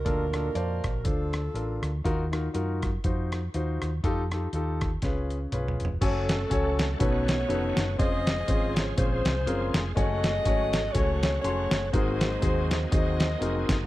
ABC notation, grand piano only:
X:1
M:4/4
L:1/8
Q:"Swing" 1/4=122
K:Bb
V:1 name="Grand piano"
[DFAB] [DFAB] [cdfa] z [DFAc] z [DFAB] z | [EF_GB] [EFGB] [EFGB] z [EFGc] z [EFGc] z | [EFGA] [EFGA] [EFGA] z [_DF_A_c] z [DFAc] z | [K:Gblyd] [DG=Ad_a] z [DG=Ad_a] z [DEG=A_c] z [DEGAc] z |
[CDFAc] z [CDFAc] z [CDFAc] z [CDFAB] z | [=A,DGd_a] z [=A,DGd_a] z [=A,DGd_a] z [=A,DG_ac'] z | [CEGAB] z [CEGAc] z [CEGAc] z [CEGAB] z |]
V:2 name="Grand piano" clef=bass
B,,3 z4 z | E,3 z4 z | z4 _D,3 z | [K:Gblyd] z4 _C,3 z |
z8 | z8 | A,,3 z4 z |]